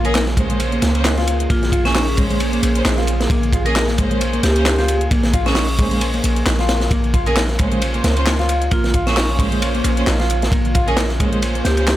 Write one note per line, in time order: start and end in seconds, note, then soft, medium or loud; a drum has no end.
0.00 0.79 A#1 loud
0.00 11.97 C#3 medium
0.00 11.97 A#3 medium
0.00 6.90 G#4 loud
0.05 0.12 A#3 loud
0.05 0.12 C#4 medium
0.05 0.12 G#4 loud
0.05 0.18 A#4 medium
0.05 closed hi-hat soft
0.05 ride soft
0.15 0.25 D#4 medium
0.15 snare loud
0.15 clap loud
0.15 closed hi-hat soft
0.15 ride loud
0.27 snare soft
0.27 closed hi-hat soft
0.37 0.49 G#3 medium
0.37 0.92 A#3 medium
0.37 0.92 C#4 medium
0.37 0.92 C5 medium
0.37 kick loud
0.37 closed hi-hat medium
0.37 ride medium
0.50 0.58 G#3 loud
0.50 closed hi-hat soft
0.60 closed hi-hat soft
0.60 ride medium
0.72 1.04 A#3 medium
0.72 closed hi-hat soft
0.82 1.47 C#2 medium
0.82 snare medium
0.82 closed hi-hat medium
0.82 ride medium
0.95 1.02 A#3 loud
0.95 1.02 C#4 medium
0.95 1.02 C5 loud
0.95 closed hi-hat soft
0.95 ride soft
1.05 1.15 D#4 medium
1.05 snare loud
1.05 clap loud
1.05 closed hi-hat soft
1.05 ride loud
1.18 1.49 F4 loud
1.18 snare soft
1.18 closed hi-hat soft
1.27 closed hi-hat medium
1.27 ride medium
1.40 closed hi-hat soft
1.50 2.60 A#1 loud
1.50 1.72 A#3 medium
1.50 1.83 F4 medium
1.50 kick loud
1.50 closed hi-hat soft
1.50 ride loud
1.63 snare soft
1.63 closed hi-hat soft
1.72 1.85 F4 loud
1.72 kick medium
1.72 closed hi-hat medium
1.72 ride medium
1.85 1.92 A#3 loud
1.85 2.18 C#4 medium
1.85 1.92 C#4 medium
1.85 1.92 G#4 loud
1.85 snare soft
1.85 closed hi-hat soft
1.95 2.06 D#4 medium
1.95 snare loud
1.95 clap loud
1.95 closed hi-hat soft
1.95 open hi-hat medium
2.08 closed hi-hat soft
2.17 2.29 G#3 medium
2.17 2.73 A#3 medium
2.17 2.73 C#4 medium
2.17 2.73 C5 medium
2.17 kick medium
2.17 closed hi-hat medium
2.17 ride medium
2.30 2.39 G#3 loud
2.30 closed hi-hat soft
2.40 closed hi-hat soft
2.40 ride medium
2.53 2.84 A#3 medium
2.53 closed hi-hat soft
2.63 2.82 A#1 medium
2.63 closed hi-hat medium
2.63 ride medium
2.75 2.82 A#3 loud
2.75 2.82 C#4 medium
2.75 2.82 C5 loud
2.75 closed hi-hat soft
2.85 3.27 A#1 loud
2.85 2.96 D#4 medium
2.85 snare loud
2.85 clap loud
2.85 closed hi-hat soft
2.85 ride medium
2.98 3.30 F4 loud
2.98 snare soft
2.98 closed hi-hat soft
3.07 closed hi-hat medium
3.07 ride medium
3.20 snare medium
3.20 closed hi-hat soft
3.30 4.40 A#1 loud
3.30 3.52 A#3 medium
3.30 kick loud
3.30 closed hi-hat soft
3.30 ride medium
3.43 closed hi-hat soft
3.53 3.65 F4 loud
3.53 kick loud
3.53 closed hi-hat medium
3.53 ride medium
3.66 3.73 A#3 loud
3.66 3.73 C#4 medium
3.66 3.73 G#4 loud
3.66 3.78 A#4 medium
3.66 closed hi-hat soft
3.66 ride soft
3.76 3.86 D#4 medium
3.76 snare loud
3.76 clap loud
3.76 closed hi-hat soft
3.76 ride medium
3.88 snare soft
3.88 closed hi-hat soft
3.98 4.10 G#3 medium
3.98 4.53 A#3 medium
3.98 4.53 C#4 medium
3.98 4.53 C5 loud
3.98 kick medium
3.98 closed hi-hat medium
3.98 ride medium
4.11 4.19 G#3 loud
4.11 closed hi-hat soft
4.21 closed hi-hat soft
4.21 ride loud
4.33 4.65 A#3 medium
4.33 closed hi-hat soft
4.43 5.08 C#2 medium
4.43 4.51 G4 medium
4.43 snare medium
4.43 closed hi-hat medium
4.43 ride medium
4.56 4.63 A#3 loud
4.56 4.63 C#4 medium
4.56 4.62 G4 medium
4.56 4.63 C5 loud
4.56 closed hi-hat soft
4.56 ride soft
4.65 4.76 D#4 medium
4.65 snare loud
4.65 clap loud
4.65 closed hi-hat soft
4.65 ride medium
4.78 5.10 F4 loud
4.78 4.91 G4 medium
4.78 snare soft
4.78 closed hi-hat soft
4.88 closed hi-hat medium
4.88 ride medium
5.01 closed hi-hat soft
5.11 6.21 A#1 loud
5.11 5.33 A#3 medium
5.11 kick loud
5.11 closed hi-hat soft
5.11 ride loud
5.23 snare soft
5.23 closed hi-hat soft
5.34 5.45 F4 loud
5.34 kick medium
5.34 closed hi-hat medium
5.34 ride medium
5.46 5.53 A#3 loud
5.46 5.53 C#4 medium
5.46 6.09 C#4 medium
5.46 5.53 G#4 loud
5.46 snare soft
5.46 closed hi-hat soft
5.55 5.66 D#4 medium
5.55 snare loud
5.55 clap loud
5.55 closed hi-hat soft
5.55 open hi-hat medium
5.69 closed hi-hat soft
5.79 5.90 G#3 medium
5.79 6.34 A#3 medium
5.79 6.34 C#4 medium
5.79 6.34 C5 medium
5.79 kick loud
5.79 closed hi-hat medium
5.79 ride medium
5.91 5.99 G#3 loud
5.91 closed hi-hat soft
6.01 closed hi-hat soft
6.01 ride loud
6.14 6.45 A#3 medium
6.14 closed hi-hat soft
6.24 6.43 A#1 medium
6.24 closed hi-hat medium
6.24 ride medium
6.36 closed hi-hat soft
6.46 6.88 A#1 loud
6.46 6.57 D#4 medium
6.46 snare loud
6.46 clap loud
6.46 closed hi-hat soft
6.46 ride loud
6.59 6.91 F4 loud
6.59 snare soft
6.59 closed hi-hat soft
6.69 snare loud
6.69 closed hi-hat medium
6.69 ride medium
6.80 snare medium
6.80 closed hi-hat soft
6.91 8.01 A#1 loud
6.91 7.13 A#3 medium
6.91 11.97 F4 loud
6.91 kick loud
6.91 closed hi-hat soft
6.91 ride loud
7.04 closed hi-hat soft
7.14 7.26 F4 loud
7.14 kick loud
7.14 closed hi-hat medium
7.14 ride medium
7.26 7.34 A#3 loud
7.26 7.34 C#4 medium
7.26 7.34 G#4 loud
7.26 7.39 A#4 medium
7.26 closed hi-hat soft
7.26 ride soft
7.36 7.47 D#4 medium
7.36 snare loud
7.36 clap loud
7.36 closed hi-hat soft
7.36 ride medium
7.49 snare soft
7.49 closed hi-hat soft
7.59 7.71 G#3 medium
7.59 8.14 A#3 medium
7.59 8.14 C#4 medium
7.59 8.14 C5 medium
7.59 kick loud
7.59 closed hi-hat medium
7.59 ride medium
7.72 7.80 G#3 loud
7.72 closed hi-hat soft
7.82 closed hi-hat soft
7.82 ride medium
7.94 8.26 A#3 medium
7.94 closed hi-hat soft
8.04 8.69 C#2 medium
8.04 snare medium
8.04 closed hi-hat medium
8.04 ride medium
8.17 8.24 A#3 loud
8.17 8.24 C#4 medium
8.17 8.24 C5 loud
8.17 closed hi-hat soft
8.17 ride soft
8.27 8.37 D#4 medium
8.27 snare loud
8.27 clap loud
8.27 closed hi-hat soft
8.27 ride loud
8.39 8.71 F4 loud
8.39 snare soft
8.39 closed hi-hat soft
8.49 closed hi-hat medium
8.49 ride medium
8.62 closed hi-hat soft
8.71 9.81 A#1 loud
8.71 8.93 A#3 medium
8.71 9.04 F4 medium
8.71 kick loud
8.71 closed hi-hat soft
8.71 ride medium
8.84 snare soft
8.84 closed hi-hat soft
8.94 9.06 F4 loud
8.94 kick medium
8.94 closed hi-hat medium
8.94 ride medium
9.07 9.14 A#3 loud
9.07 9.39 C#4 medium
9.07 9.14 C#4 medium
9.07 9.14 G#4 loud
9.07 snare soft
9.07 closed hi-hat soft
9.17 9.27 D#4 medium
9.17 snare loud
9.17 clap loud
9.17 closed hi-hat soft
9.17 open hi-hat medium
9.29 closed hi-hat soft
9.39 9.51 G#3 medium
9.39 9.95 A#3 medium
9.39 9.95 C#4 medium
9.39 9.95 C5 loud
9.39 kick medium
9.39 closed hi-hat medium
9.39 ride medium
9.52 9.60 G#3 loud
9.52 closed hi-hat soft
9.62 closed hi-hat soft
9.62 ride medium
9.75 10.06 A#3 medium
9.75 closed hi-hat soft
9.84 10.03 A#1 medium
9.84 closed hi-hat medium
9.84 ride medium
9.97 10.04 A#3 loud
9.97 10.04 C#4 medium
9.97 10.04 C5 loud
9.97 closed hi-hat soft
10.07 10.49 A#1 loud
10.07 10.18 D#4 medium
10.07 snare loud
10.07 clap loud
10.07 closed hi-hat soft
10.07 ride medium
10.20 10.51 F4 loud
10.20 snare soft
10.20 closed hi-hat soft
10.30 closed hi-hat medium
10.30 ride medium
10.42 snare medium
10.42 closed hi-hat soft
10.52 11.62 A#1 loud
10.52 10.74 A#3 medium
10.52 kick loud
10.52 closed hi-hat soft
10.52 ride loud
10.65 closed hi-hat soft
10.75 10.87 F4 loud
10.75 kick loud
10.75 closed hi-hat medium
10.75 ride medium
10.87 10.94 A#3 loud
10.87 10.94 C#4 medium
10.87 10.94 G#4 loud
10.87 11.00 A#4 medium
10.87 closed hi-hat soft
10.87 ride soft
10.97 11.08 D#4 medium
10.97 snare loud
10.97 clap loud
10.97 closed hi-hat soft
10.97 ride medium
11.09 snare soft
11.09 closed hi-hat soft
11.20 11.31 G#3 medium
11.20 11.75 A#3 medium
11.20 11.75 C#4 medium
11.20 11.75 C5 loud
11.20 kick medium
11.20 closed hi-hat medium
11.20 ride medium
11.32 11.41 G#3 loud
11.32 closed hi-hat soft
11.42 closed hi-hat soft
11.42 ride medium
11.55 11.87 A#3 medium
11.55 closed hi-hat soft
11.65 11.97 C#2 medium
11.65 11.73 G4 medium
11.65 snare medium
11.65 closed hi-hat medium
11.65 ride medium
11.77 11.85 A#3 medium
11.77 11.85 C#4 medium
11.77 11.84 G4 medium
11.77 11.85 C5 loud
11.77 closed hi-hat soft
11.77 ride soft
11.87 11.97 D#4 medium
11.87 snare loud
11.87 clap loud
11.87 closed hi-hat soft
11.87 ride medium